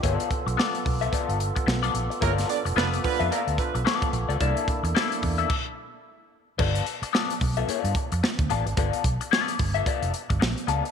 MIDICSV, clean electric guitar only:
0, 0, Header, 1, 3, 480
1, 0, Start_track
1, 0, Tempo, 545951
1, 32, Time_signature, 4, 2, 24, 8
1, 9593, End_track
2, 0, Start_track
2, 0, Title_t, "Clean electric guitar"
2, 0, Program_c, 0, 27
2, 26, Note_on_c, 0, 58, 79
2, 31, Note_on_c, 0, 64, 76
2, 38, Note_on_c, 0, 68, 82
2, 41, Note_on_c, 0, 73, 89
2, 123, Note_off_c, 0, 58, 0
2, 123, Note_on_c, 0, 59, 79
2, 128, Note_off_c, 0, 64, 0
2, 128, Note_on_c, 0, 65, 76
2, 134, Note_off_c, 0, 68, 0
2, 134, Note_on_c, 0, 69, 82
2, 138, Note_off_c, 0, 73, 0
2, 138, Note_on_c, 0, 74, 89
2, 254, Note_off_c, 0, 59, 0
2, 256, Note_off_c, 0, 65, 0
2, 260, Note_off_c, 0, 69, 0
2, 261, Note_off_c, 0, 74, 0
2, 504, Note_on_c, 0, 59, 77
2, 511, Note_on_c, 0, 65, 71
2, 516, Note_on_c, 0, 69, 80
2, 521, Note_on_c, 0, 74, 80
2, 680, Note_off_c, 0, 59, 0
2, 684, Note_off_c, 0, 65, 0
2, 686, Note_off_c, 0, 69, 0
2, 689, Note_off_c, 0, 74, 0
2, 889, Note_on_c, 0, 76, 67
2, 895, Note_on_c, 0, 69, 55
2, 900, Note_on_c, 0, 65, 51
2, 905, Note_on_c, 0, 59, 53
2, 973, Note_off_c, 0, 59, 0
2, 980, Note_off_c, 0, 65, 0
2, 983, Note_on_c, 0, 59, 90
2, 987, Note_off_c, 0, 69, 0
2, 991, Note_off_c, 0, 76, 0
2, 991, Note_on_c, 0, 65, 80
2, 998, Note_on_c, 0, 69, 86
2, 1001, Note_on_c, 0, 74, 79
2, 1213, Note_off_c, 0, 59, 0
2, 1217, Note_off_c, 0, 65, 0
2, 1220, Note_off_c, 0, 69, 0
2, 1222, Note_off_c, 0, 74, 0
2, 1607, Note_on_c, 0, 74, 87
2, 1615, Note_on_c, 0, 69, 76
2, 1619, Note_on_c, 0, 65, 67
2, 1624, Note_on_c, 0, 59, 57
2, 1695, Note_off_c, 0, 59, 0
2, 1699, Note_off_c, 0, 65, 0
2, 1704, Note_off_c, 0, 69, 0
2, 1706, Note_off_c, 0, 74, 0
2, 1945, Note_on_c, 0, 58, 84
2, 1952, Note_on_c, 0, 64, 79
2, 1955, Note_on_c, 0, 68, 88
2, 1961, Note_on_c, 0, 73, 78
2, 2042, Note_off_c, 0, 58, 0
2, 2042, Note_on_c, 0, 59, 84
2, 2049, Note_off_c, 0, 64, 0
2, 2049, Note_on_c, 0, 65, 79
2, 2052, Note_off_c, 0, 68, 0
2, 2052, Note_on_c, 0, 69, 88
2, 2058, Note_off_c, 0, 73, 0
2, 2058, Note_on_c, 0, 74, 78
2, 2175, Note_off_c, 0, 59, 0
2, 2178, Note_off_c, 0, 65, 0
2, 2180, Note_off_c, 0, 69, 0
2, 2183, Note_off_c, 0, 74, 0
2, 2428, Note_on_c, 0, 59, 82
2, 2433, Note_on_c, 0, 65, 81
2, 2440, Note_on_c, 0, 69, 79
2, 2445, Note_on_c, 0, 74, 98
2, 2603, Note_off_c, 0, 59, 0
2, 2606, Note_off_c, 0, 65, 0
2, 2609, Note_off_c, 0, 69, 0
2, 2612, Note_off_c, 0, 74, 0
2, 2809, Note_on_c, 0, 76, 65
2, 2814, Note_on_c, 0, 69, 61
2, 2820, Note_on_c, 0, 65, 60
2, 2823, Note_on_c, 0, 59, 52
2, 2895, Note_off_c, 0, 59, 0
2, 2902, Note_off_c, 0, 65, 0
2, 2905, Note_on_c, 0, 59, 82
2, 2906, Note_off_c, 0, 69, 0
2, 2911, Note_off_c, 0, 76, 0
2, 2912, Note_on_c, 0, 65, 94
2, 2917, Note_on_c, 0, 69, 98
2, 2923, Note_on_c, 0, 74, 105
2, 3135, Note_off_c, 0, 59, 0
2, 3139, Note_off_c, 0, 65, 0
2, 3141, Note_off_c, 0, 69, 0
2, 3144, Note_off_c, 0, 74, 0
2, 3386, Note_on_c, 0, 59, 75
2, 3392, Note_on_c, 0, 65, 87
2, 3397, Note_on_c, 0, 69, 92
2, 3401, Note_on_c, 0, 74, 114
2, 3579, Note_off_c, 0, 59, 0
2, 3582, Note_off_c, 0, 65, 0
2, 3584, Note_off_c, 0, 69, 0
2, 3586, Note_off_c, 0, 74, 0
2, 3768, Note_on_c, 0, 74, 66
2, 3775, Note_on_c, 0, 69, 60
2, 3780, Note_on_c, 0, 65, 53
2, 3786, Note_on_c, 0, 59, 52
2, 3863, Note_off_c, 0, 59, 0
2, 3866, Note_off_c, 0, 69, 0
2, 3867, Note_on_c, 0, 58, 82
2, 3869, Note_off_c, 0, 65, 0
2, 3871, Note_off_c, 0, 74, 0
2, 3873, Note_on_c, 0, 64, 85
2, 3876, Note_on_c, 0, 69, 89
2, 3883, Note_on_c, 0, 74, 98
2, 4096, Note_off_c, 0, 58, 0
2, 4099, Note_off_c, 0, 64, 0
2, 4101, Note_off_c, 0, 69, 0
2, 4105, Note_off_c, 0, 74, 0
2, 4352, Note_on_c, 0, 58, 93
2, 4359, Note_on_c, 0, 64, 82
2, 4363, Note_on_c, 0, 69, 102
2, 4368, Note_on_c, 0, 74, 86
2, 4526, Note_off_c, 0, 58, 0
2, 4529, Note_off_c, 0, 64, 0
2, 4531, Note_off_c, 0, 69, 0
2, 4534, Note_off_c, 0, 74, 0
2, 4732, Note_on_c, 0, 76, 57
2, 4740, Note_on_c, 0, 69, 56
2, 4742, Note_on_c, 0, 64, 56
2, 4749, Note_on_c, 0, 58, 46
2, 4833, Note_off_c, 0, 76, 0
2, 4837, Note_off_c, 0, 69, 0
2, 4839, Note_off_c, 0, 64, 0
2, 4842, Note_off_c, 0, 58, 0
2, 5789, Note_on_c, 0, 59, 75
2, 5796, Note_on_c, 0, 65, 74
2, 5799, Note_on_c, 0, 69, 88
2, 5804, Note_on_c, 0, 74, 92
2, 6017, Note_off_c, 0, 59, 0
2, 6020, Note_off_c, 0, 65, 0
2, 6022, Note_off_c, 0, 69, 0
2, 6025, Note_off_c, 0, 74, 0
2, 6270, Note_on_c, 0, 59, 84
2, 6276, Note_on_c, 0, 65, 80
2, 6280, Note_on_c, 0, 69, 92
2, 6285, Note_on_c, 0, 74, 90
2, 6444, Note_off_c, 0, 59, 0
2, 6448, Note_off_c, 0, 65, 0
2, 6450, Note_off_c, 0, 69, 0
2, 6452, Note_off_c, 0, 74, 0
2, 6656, Note_on_c, 0, 76, 69
2, 6661, Note_on_c, 0, 69, 64
2, 6667, Note_on_c, 0, 65, 65
2, 6670, Note_on_c, 0, 59, 58
2, 6742, Note_off_c, 0, 59, 0
2, 6749, Note_off_c, 0, 65, 0
2, 6752, Note_off_c, 0, 69, 0
2, 6752, Note_on_c, 0, 58, 86
2, 6755, Note_off_c, 0, 76, 0
2, 6760, Note_on_c, 0, 64, 93
2, 6763, Note_on_c, 0, 68, 81
2, 6769, Note_on_c, 0, 74, 86
2, 6849, Note_off_c, 0, 58, 0
2, 6849, Note_on_c, 0, 59, 86
2, 6856, Note_off_c, 0, 64, 0
2, 6856, Note_on_c, 0, 65, 93
2, 6860, Note_off_c, 0, 68, 0
2, 6860, Note_on_c, 0, 69, 81
2, 6978, Note_off_c, 0, 59, 0
2, 6982, Note_off_c, 0, 65, 0
2, 6984, Note_off_c, 0, 69, 0
2, 6987, Note_off_c, 0, 74, 0
2, 7470, Note_on_c, 0, 59, 53
2, 7476, Note_on_c, 0, 65, 65
2, 7481, Note_on_c, 0, 69, 70
2, 7488, Note_on_c, 0, 74, 77
2, 7607, Note_off_c, 0, 74, 0
2, 7614, Note_off_c, 0, 69, 0
2, 7617, Note_off_c, 0, 59, 0
2, 7620, Note_off_c, 0, 65, 0
2, 7710, Note_on_c, 0, 59, 72
2, 7719, Note_on_c, 0, 65, 83
2, 7722, Note_on_c, 0, 69, 85
2, 7728, Note_on_c, 0, 74, 95
2, 7937, Note_off_c, 0, 59, 0
2, 7941, Note_off_c, 0, 65, 0
2, 7942, Note_off_c, 0, 69, 0
2, 7946, Note_off_c, 0, 74, 0
2, 8189, Note_on_c, 0, 59, 81
2, 8196, Note_on_c, 0, 65, 80
2, 8201, Note_on_c, 0, 69, 89
2, 8207, Note_on_c, 0, 74, 84
2, 8379, Note_off_c, 0, 59, 0
2, 8382, Note_off_c, 0, 65, 0
2, 8385, Note_off_c, 0, 69, 0
2, 8388, Note_off_c, 0, 74, 0
2, 8567, Note_on_c, 0, 76, 72
2, 8574, Note_on_c, 0, 69, 63
2, 8577, Note_on_c, 0, 65, 61
2, 8582, Note_on_c, 0, 59, 56
2, 8655, Note_off_c, 0, 59, 0
2, 8662, Note_off_c, 0, 65, 0
2, 8665, Note_off_c, 0, 69, 0
2, 8666, Note_on_c, 0, 59, 80
2, 8669, Note_off_c, 0, 76, 0
2, 8672, Note_on_c, 0, 65, 86
2, 8676, Note_on_c, 0, 69, 96
2, 8680, Note_on_c, 0, 74, 94
2, 8894, Note_off_c, 0, 59, 0
2, 8897, Note_off_c, 0, 65, 0
2, 8899, Note_off_c, 0, 69, 0
2, 8901, Note_off_c, 0, 74, 0
2, 9384, Note_on_c, 0, 59, 65
2, 9392, Note_on_c, 0, 65, 65
2, 9395, Note_on_c, 0, 69, 74
2, 9400, Note_on_c, 0, 74, 82
2, 9523, Note_off_c, 0, 74, 0
2, 9528, Note_off_c, 0, 69, 0
2, 9532, Note_off_c, 0, 59, 0
2, 9532, Note_off_c, 0, 65, 0
2, 9593, End_track
3, 0, Start_track
3, 0, Title_t, "Muted clean electric guitar strokes"
3, 410, Note_on_c, 9, 29, 48
3, 498, Note_off_c, 9, 29, 0
3, 747, Note_on_c, 9, 29, 44
3, 835, Note_off_c, 9, 29, 0
3, 1227, Note_on_c, 9, 29, 38
3, 1315, Note_off_c, 9, 29, 0
3, 1368, Note_on_c, 9, 29, 50
3, 1456, Note_off_c, 9, 29, 0
3, 1465, Note_on_c, 9, 29, 45
3, 1553, Note_off_c, 9, 29, 0
3, 1706, Note_on_c, 9, 29, 43
3, 1794, Note_off_c, 9, 29, 0
3, 1849, Note_on_c, 9, 29, 51
3, 1937, Note_off_c, 9, 29, 0
3, 2334, Note_on_c, 9, 29, 50
3, 2422, Note_off_c, 9, 29, 0
3, 2672, Note_on_c, 9, 29, 48
3, 2760, Note_off_c, 9, 29, 0
3, 3150, Note_on_c, 9, 29, 40
3, 3238, Note_off_c, 9, 29, 0
3, 3294, Note_on_c, 9, 29, 50
3, 3382, Note_off_c, 9, 29, 0
3, 3624, Note_on_c, 9, 29, 42
3, 3712, Note_off_c, 9, 29, 0
3, 4252, Note_on_c, 9, 29, 48
3, 4340, Note_off_c, 9, 29, 0
3, 4592, Note_on_c, 9, 29, 52
3, 4680, Note_off_c, 9, 29, 0
3, 6180, Note_on_c, 9, 29, 45
3, 6268, Note_off_c, 9, 29, 0
3, 6513, Note_on_c, 9, 29, 51
3, 6601, Note_off_c, 9, 29, 0
3, 6999, Note_on_c, 9, 29, 41
3, 7087, Note_off_c, 9, 29, 0
3, 7143, Note_on_c, 9, 29, 42
3, 7231, Note_off_c, 9, 29, 0
3, 7239, Note_on_c, 9, 29, 39
3, 7327, Note_off_c, 9, 29, 0
3, 7618, Note_on_c, 9, 29, 56
3, 7706, Note_off_c, 9, 29, 0
3, 8096, Note_on_c, 9, 29, 41
3, 8184, Note_off_c, 9, 29, 0
3, 8428, Note_on_c, 9, 29, 47
3, 8516, Note_off_c, 9, 29, 0
3, 8909, Note_on_c, 9, 29, 34
3, 8997, Note_off_c, 9, 29, 0
3, 9052, Note_on_c, 9, 29, 37
3, 9140, Note_off_c, 9, 29, 0
3, 9144, Note_on_c, 9, 29, 38
3, 9232, Note_off_c, 9, 29, 0
3, 9533, Note_on_c, 9, 29, 43
3, 9593, Note_off_c, 9, 29, 0
3, 9593, End_track
0, 0, End_of_file